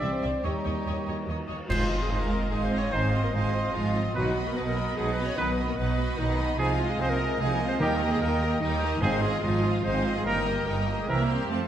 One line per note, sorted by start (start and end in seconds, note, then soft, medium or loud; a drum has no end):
0.00 0.10 C2 medium
0.00 0.11 C2 medium
0.00 0.29 E3 medium
0.00 0.29 G3 medium
0.00 0.44 C4 medium
0.00 0.44 C5 medium
0.00 0.41 D5 medium
0.00 0.45 D5 medium
0.00 0.10 D5 medium
0.00 0.40 E5 medium
0.00 0.10 E5 soft
0.00 0.42 G5 medium
0.23 0.31 C2 soft
0.23 0.31 C2 medium
0.23 0.31 D5 soft
0.23 0.31 E5 soft
0.44 0.52 D#2 medium
0.44 0.53 D#2 medium
0.44 1.48 D#3 soft
0.44 1.26 G3 medium
0.44 1.48 A#3 soft
0.44 1.28 G4 medium
0.44 1.27 G4 soft
0.44 0.52 C#5 medium
0.44 1.49 C#5 medium
0.44 1.47 C#5 soft
0.44 0.52 D#5 soft
0.44 1.48 D#5 soft
0.44 1.48 A#5 soft
0.65 0.73 D#2 soft
0.65 0.74 D#2 medium
0.65 0.73 C#5 soft
0.65 0.73 D#5 soft
0.86 0.95 D#2 soft
0.86 0.95 D#2 medium
0.86 0.94 C#5 soft
0.86 0.94 D#5 soft
1.07 1.15 D#2 soft
1.07 1.16 D#2 soft
1.07 1.16 C#5 soft
1.07 1.16 D#5 soft
1.28 1.36 D#2 medium
1.28 1.38 D#2 soft
1.28 1.37 C#5 soft
1.28 1.37 D#5 soft
1.48 1.56 D#2 soft
1.48 1.59 D#2 soft
1.48 1.57 C#5 soft
1.48 1.57 D#5 soft
1.69 2.07 G#1 medium
1.69 2.28 G#2 medium
1.69 2.06 G#2 medium
1.69 1.85 D#3 medium
1.69 1.99 F3 medium
1.69 1.89 G#3 medium
1.69 1.89 D#4 medium
1.69 1.85 D#4 medium
1.69 2.04 F4 medium
1.69 1.98 F4 medium
1.69 1.84 C5 medium
1.69 2.08 D#5 medium
1.69 1.89 F5 medium
1.69 1.90 G#5 medium
1.69 2.08 C6 medium
1.69 concert bass drum medium
1.69 crash medium
1.90 2.11 C4 medium
1.90 2.11 F4 medium
1.90 2.11 D#5 medium
1.90 2.09 F5 medium
1.99 2.11 G#3 medium
1.99 2.10 G#4 medium
1.99 2.12 G#4 medium
2.10 2.48 G#1 medium
2.10 2.47 G#2 medium
2.10 2.32 G#3 medium
2.10 2.22 C4 medium
2.10 2.32 D#4 medium
2.10 2.21 C5 medium
2.10 2.51 D#5 medium
2.10 2.30 F5 medium
2.10 2.31 G#5 medium
2.10 2.50 C6 medium
2.20 2.52 A#3 medium
2.20 2.51 A#4 medium
2.20 2.52 A#4 medium
2.31 2.52 C4 medium
2.31 2.52 F4 medium
2.31 2.52 D#5 medium
2.31 2.50 F5 medium
2.50 2.88 G#1 medium
2.50 2.88 G#2 medium
2.50 2.71 G#3 medium
2.50 2.65 G#3 medium
2.50 2.71 D#4 medium
2.50 2.56 G#4 medium
2.50 2.63 G#4 medium
2.50 2.92 D#5 medium
2.50 2.71 F5 medium
2.50 2.70 G#5 medium
2.50 2.92 C6 medium
2.64 2.79 C4 medium
2.64 2.79 C5 medium
2.64 2.70 C5 medium
2.71 2.92 C4 medium
2.71 2.92 F4 medium
2.71 2.93 D#5 medium
2.71 2.93 F5 medium
2.77 2.93 C#4 medium
2.77 2.83 C#5 medium
2.77 2.94 C#5 loud
2.91 3.30 G#1 medium
2.91 3.29 G#2 medium
2.91 3.06 D#3 medium
2.91 3.13 G#3 medium
2.91 3.23 C4 medium
2.91 3.06 D#4 medium
2.91 3.13 D#4 medium
2.91 3.23 C5 medium
2.91 3.07 C5 medium
2.91 3.23 C5 loud
2.91 3.33 D#5 medium
2.91 3.14 F5 medium
2.91 3.14 G#5 medium
2.91 3.33 C6 medium
3.12 3.33 C4 medium
3.12 3.33 F4 medium
3.12 3.35 D#5 medium
3.12 3.34 F5 soft
3.22 3.33 A#3 medium
3.22 3.33 A#4 medium
3.22 3.34 A#4 medium
3.32 3.70 G#1 medium
3.32 3.70 G#2 medium
3.32 3.53 G#3 soft
3.32 3.75 C4 medium
3.32 3.53 D#4 medium
3.32 3.74 C5 medium
3.32 3.75 D#5 medium
3.32 3.54 F5 medium
3.32 3.54 G#5 medium
3.32 3.74 C6 medium
3.54 3.75 C4 medium
3.54 3.75 F4 medium
3.54 3.75 D#5 medium
3.54 3.74 F5 medium
3.74 4.11 G#1 medium
3.74 4.11 G#2 medium
3.74 4.15 F3 medium
3.74 3.95 G#3 medium
3.74 3.95 D#4 medium
3.74 4.14 F4 medium
3.74 4.15 F4 medium
3.74 4.14 D#5 medium
3.74 3.94 F5 medium
3.74 3.95 G#5 medium
3.74 4.15 C6 medium
3.95 4.16 C4 medium
3.95 4.15 F4 medium
3.95 4.16 D#5 medium
3.95 4.16 F5 medium
4.13 4.52 B1 medium
4.13 4.51 B2 medium
4.13 4.28 D#3 medium
4.13 4.45 F#3 medium
4.13 4.35 F#3 medium
4.13 4.29 D#4 medium
4.13 4.35 D#4 medium
4.13 4.45 F#4 medium
4.13 4.49 F#4 loud
4.13 4.30 B4 medium
4.13 4.55 D#5 medium
4.13 4.56 B5 medium
4.17 4.35 B4 medium
4.17 4.35 F#5 medium
4.37 4.57 B3 medium
4.37 4.57 F#4 medium
4.37 4.57 D#5 medium
4.37 4.57 B5 medium
4.45 4.56 A#3 medium
4.45 4.56 A#4 medium
4.45 4.59 A#4 medium
4.55 4.92 B1 medium
4.55 4.92 B2 medium
4.55 4.76 F#3 medium
4.55 4.66 B3 medium
4.55 4.77 D#4 medium
4.55 4.66 B4 medium
4.55 4.77 B4 medium
4.55 4.65 B4 medium
4.55 5.37 D#5 medium
4.55 4.77 F#5 medium
4.55 5.11 B5 medium
4.64 4.96 A#3 medium
4.64 4.96 A#4 loud
4.64 4.97 A#4 medium
4.77 4.98 B3 medium
4.77 4.98 F#4 medium
4.77 4.98 D#5 medium
4.77 4.97 B5 medium
4.95 5.33 B1 medium
4.95 5.32 B2 medium
4.95 5.17 F#3 medium
4.95 5.10 G#3 medium
4.95 5.16 D#4 medium
4.95 5.10 G#4 loud
4.95 5.11 G#4 medium
4.95 5.17 B4 medium
4.95 5.16 F#5 medium
5.08 5.23 B3 medium
5.08 5.24 B4 medium
5.13 5.28 B4 medium
5.18 5.38 B3 medium
5.18 5.38 F#4 medium
5.18 5.38 D#5 medium
5.18 5.38 B5 medium
5.23 5.37 C#4 medium
5.23 5.38 C#5 medium
5.23 5.37 C#5 loud
5.37 5.73 B1 medium
5.37 5.74 B2 medium
5.37 5.52 D#3 medium
5.37 5.59 F#3 medium
5.37 5.68 B3 medium
5.37 5.52 D#4 medium
5.37 5.59 D#4 medium
5.37 5.68 B4 medium
5.37 5.52 B4 medium
5.37 5.51 B4 loud
5.37 5.59 B4 medium
5.37 5.76 D#5 medium
5.37 5.59 F#5 medium
5.37 5.77 B5 medium
5.58 5.79 B3 medium
5.58 5.79 F#4 medium
5.58 5.79 D#5 medium
5.58 5.79 B5 medium
5.66 5.78 A#3 medium
5.66 5.77 A#4 medium
5.66 5.80 A#4 medium
5.76 6.14 B1 medium
5.76 6.14 B2 medium
5.76 5.98 F#3 medium
5.76 6.19 B3 medium
5.76 6.17 B4 medium
5.76 5.97 B4 medium
5.76 6.21 B4 medium
5.76 6.18 D#5 medium
5.76 5.97 F#5 medium
5.76 6.17 B5 medium
5.81 5.99 D#4 medium
5.99 6.19 B3 medium
5.99 6.20 F#4 medium
5.99 6.20 D#5 medium
5.99 6.20 B5 medium
6.18 6.54 B1 medium
6.18 6.55 B2 medium
6.18 6.59 D#3 medium
6.18 6.40 F#3 medium
6.18 6.59 D#4 medium
6.18 6.60 D#4 medium
6.18 6.40 D#4 medium
6.18 6.40 B4 medium
6.18 6.58 D#5 medium
6.18 6.40 F#5 medium
6.18 6.58 B5 medium
6.39 6.60 B3 medium
6.39 6.60 F#4 medium
6.39 6.60 D#5 medium
6.39 6.60 B5 medium
6.58 6.95 C2 medium
6.58 6.95 C3 medium
6.58 6.74 D#3 medium
6.58 6.90 F3 medium
6.58 6.79 F3 medium
6.58 6.74 D#4 medium
6.58 6.79 D#4 medium
6.58 6.90 F4 medium
6.58 6.91 F4 loud
6.58 6.73 G#4 medium
6.58 6.99 D#5 medium
6.58 6.78 F5 medium
6.58 6.97 G#5 medium
6.58 6.79 G#5 medium
6.79 7.01 G#3 medium
6.79 7.01 F4 medium
6.79 7.00 D#5 medium
6.79 6.98 F5 medium
6.88 6.99 G#3 medium
6.88 6.93 G#4 medium
6.88 7.02 G#4 loud
6.98 7.35 C2 medium
6.98 7.35 C3 medium
6.98 7.20 F3 medium
6.98 7.04 C4 medium
6.98 7.21 D#4 medium
6.98 7.10 C5 medium
6.98 7.11 C5 loud
6.98 7.40 D#5 medium
6.98 7.17 F5 medium
6.98 7.37 G#5 medium
6.98 7.20 G#5 medium
7.09 7.23 A#3 medium
7.09 7.42 A#4 loud
7.09 7.40 A#4 medium
7.18 7.41 G#3 medium
7.18 7.41 F4 medium
7.18 7.39 D#5 medium
7.18 7.39 F5 medium
7.38 7.76 C2 medium
7.38 7.76 C3 medium
7.38 7.46 G#3 medium
7.38 7.60 D#4 medium
7.38 7.54 G#4 loud
7.38 7.81 D#5 medium
7.38 7.59 F5 medium
7.38 7.79 G#5 medium
7.38 7.60 G#5 medium
7.42 7.61 F3 medium
7.54 7.67 A#3 medium
7.54 7.67 A#4 medium
7.54 7.68 A#4 loud
7.61 7.82 G#3 medium
7.61 7.82 F4 medium
7.61 7.81 D#5 medium
7.61 7.81 F5 medium
7.66 7.81 C4 medium
7.66 7.80 C5 medium
7.66 7.74 C5 loud
7.79 8.17 D#2 medium
7.79 8.38 D#3 medium
7.79 7.95 D#3 medium
7.79 8.17 D#3 medium
7.79 8.01 G3 medium
7.79 8.11 A#3 medium
7.79 7.94 D#4 medium
7.79 8.00 D#4 medium
7.79 7.95 G4 medium
7.79 8.12 A#4 loud
7.79 8.11 A#4 medium
7.79 8.00 A#4 medium
7.79 8.22 D#5 medium
7.79 8.20 G5 medium
7.79 8.00 G5 medium
8.00 8.22 A#3 medium
8.00 8.22 G4 medium
8.00 8.21 D#5 medium
8.00 8.21 A#5 medium
8.11 8.21 G#3 medium
8.11 8.21 G#4 medium
8.11 8.21 G#4 loud
8.20 8.57 D#2 medium
8.20 8.57 D#3 medium
8.20 8.42 G3 medium
8.20 8.61 A#3 medium
8.20 8.41 D#4 medium
8.20 8.41 A#4 medium
8.20 8.59 A#4 loud
8.20 8.62 A#4 medium
8.20 8.61 D#5 medium
8.20 8.42 G5 medium
8.20 8.61 G5 medium
8.42 8.62 A#3 medium
8.42 8.62 G4 medium
8.42 8.62 D#5 medium
8.42 8.62 A#5 medium
8.60 8.98 D#2 medium
8.60 8.97 D#3 medium
8.60 9.02 D#3 loud
8.60 8.81 G3 medium
8.60 9.02 D#4 loud
8.60 9.02 D#4 medium
8.60 8.81 D#4 medium
8.60 8.81 A#4 medium
8.60 9.02 D#5 medium
8.60 8.81 G5 medium
8.60 9.02 G5 medium
8.81 9.02 A#3 medium
8.81 9.02 G4 medium
8.81 9.03 D#5 medium
8.81 9.03 A#5 medium
9.01 9.39 G#1 medium
9.01 9.38 G#2 medium
9.01 9.60 G#2 loud
9.01 9.18 D#3 medium
9.01 9.22 G#3 medium
9.01 9.18 C4 medium
9.01 9.13 C4 loud
9.01 9.21 D#4 medium
9.01 9.17 G#4 medium
9.01 9.23 C5 loud
9.01 9.43 D#5 medium
9.01 9.22 F5 medium
9.01 9.22 G#5 medium
9.01 9.43 C6 medium
9.22 9.44 G#3 loud
9.22 9.43 C4 medium
9.22 9.43 F4 medium
9.22 9.41 G#4 loud
9.22 9.43 G#4 loud
9.22 9.44 D#5 medium
9.22 9.44 F5 medium
9.42 9.80 G#1 medium
9.42 9.79 G#2 medium
9.42 9.84 F3 medium
9.42 9.64 G#3 medium
9.42 9.64 D#4 medium
9.42 9.85 F4 medium
9.42 9.84 F4 medium
9.42 9.73 D#5 medium
9.42 9.65 F5 medium
9.42 9.65 G#5 medium
9.42 9.83 C6 medium
9.63 9.84 C4 medium
9.63 9.85 F4 medium
9.63 9.86 D#5 medium
9.63 9.84 F5 medium
9.83 10.21 G#1 medium
9.83 10.21 G#2 loud
9.83 10.04 G#3 medium
9.83 10.16 C4 loud
9.83 10.03 D#4 medium
9.83 10.15 C5 loud
9.83 10.16 C5 medium
9.83 10.25 D#5 medium
9.83 10.04 F5 medium
9.83 10.04 G#5 medium
9.83 10.24 C6 medium
10.05 10.26 C4 medium
10.05 10.26 F4 medium
10.05 10.27 D#5 medium
10.05 10.26 F5 medium
10.15 10.26 G#3 medium
10.15 10.25 G#4 medium
10.25 10.62 G1 medium
10.25 10.62 G2 medium
10.25 10.40 D#3 medium
10.25 10.45 G3 medium
10.25 10.40 A#3 medium
10.25 10.65 A#3 medium
10.25 10.45 D#4 medium
10.25 10.65 A#4 medium
10.25 10.40 A#4 medium
10.25 10.66 A#4 loud
10.25 10.66 D#5 medium
10.25 10.46 G5 medium
10.25 10.64 A#5 medium
10.25 10.46 A#5 medium
10.47 10.68 A#3 medium
10.47 10.67 G4 medium
10.47 10.67 D#5 medium
10.47 10.65 G5 medium
10.65 11.04 G1 medium
10.65 11.03 G2 medium
10.65 10.88 G3 medium
10.65 10.97 A#3 medium
10.65 10.88 D#4 medium
10.65 10.97 A#4 medium
10.65 10.80 A#4 loud
10.65 11.08 D#5 medium
10.65 10.87 G5 medium
10.65 11.06 A#5 medium
10.65 10.88 A#5 medium
10.89 11.09 A#3 medium
10.89 11.09 G4 medium
10.89 11.09 D#5 medium
10.89 11.09 G5 medium
10.98 11.09 G#3 medium
10.98 11.08 G#4 medium
11.07 11.46 C2 medium
11.07 11.45 C3 medium
11.07 11.23 E3 medium
11.07 11.50 G3 medium
11.07 11.48 A#3 medium
11.07 11.22 C4 medium
11.07 11.29 E4 medium
11.07 11.49 G4 medium
11.07 11.47 A#4 medium
11.07 11.23 A#4 medium
11.07 11.52 A#4 medium
11.07 11.29 E5 medium
11.07 11.30 E5 medium
11.07 11.28 A#5 medium
11.30 11.50 C4 medium
11.30 11.51 G4 medium
11.30 11.51 G5 medium
11.30 11.51 C6 medium
11.50 11.68 F2 soft
11.50 11.68 F2 medium
11.50 11.68 F3 soft
11.50 11.68 A3 medium
11.50 11.68 A3 soft
11.50 11.59 C4 medium
11.50 11.68 C4 medium
11.50 11.68 F4 soft
11.50 11.68 C5 medium
11.50 11.68 C5 soft
11.50 11.68 F5 medium
11.50 11.68 A5 soft